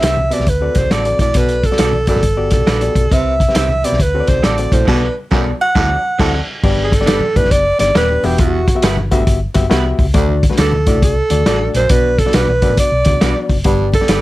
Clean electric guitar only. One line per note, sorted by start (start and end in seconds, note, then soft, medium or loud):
0.02 0.15 C4 medium
0.02 0.15 G4 medium
0.02 0.16 B4 medium
0.02 0.16 E5 medium
0.91 1.03 C4 medium
0.91 1.04 F#4 medium
0.91 1.04 A4 medium
0.91 1.04 D5 medium
1.79 1.91 B3 medium
1.79 1.92 F#4 medium
1.79 1.92 A4 medium
1.79 1.92 D5 medium
2.67 2.80 D4 medium
2.67 2.80 F#4 medium
2.67 2.80 B4 medium
2.67 2.80 D5 medium
3.55 3.67 C4 medium
3.55 3.68 G4 medium
3.55 3.68 B4 medium
3.55 3.68 E5 medium
4.43 4.55 C4 medium
4.43 4.56 F#4 medium
4.43 4.56 A4 medium
4.43 4.56 D5 medium
4.87 5.07 B3 loud
4.87 5.07 F#4 loud
4.87 5.07 A4 loud
4.87 5.07 D5 loud
5.31 5.51 B3 loud
5.31 5.51 F#4 loud
5.31 5.51 A4 medium
5.31 5.51 D5 loud
5.75 5.95 C4 loud
5.75 5.95 F#4 medium
5.75 5.95 A4 loud
5.75 5.96 D5 loud
6.19 6.38 C4 medium
6.19 6.39 F#4 medium
6.19 6.39 A4 medium
6.19 6.39 D5 medium
7.06 7.19 D4 medium
7.06 7.19 G4 medium
7.06 7.19 B4 medium
7.06 7.20 D5 medium
7.95 8.07 D4 medium
7.95 8.07 G4 medium
7.95 8.07 B4 medium
7.95 8.08 D5 medium
8.83 8.95 G3 medium
8.83 8.95 B3 medium
8.83 8.95 F#4 medium
8.83 8.96 B4 loud
9.71 9.83 G3 medium
9.71 9.83 B3 medium
9.71 9.84 F#4 medium
9.71 9.84 B4 medium
10.58 10.70 D4 medium
10.58 10.71 F#4 medium
10.58 10.71 A4 medium
10.58 10.71 D5 medium
11.47 11.58 D4 medium
11.47 11.59 F#4 medium
11.47 11.59 A4 medium
11.47 11.59 D5 medium
12.34 12.46 D4 medium
12.34 12.46 F#4 medium
12.34 12.46 B4 medium
12.34 12.46 D5 medium
13.21 13.33 D4 medium
13.21 13.33 F#4 medium
13.21 13.34 B4 medium
13.21 13.34 D5 medium
14.09 14.21 D4 medium
14.09 14.21 G4 medium
14.09 14.21 B4 medium
14.09 14.21 D5 medium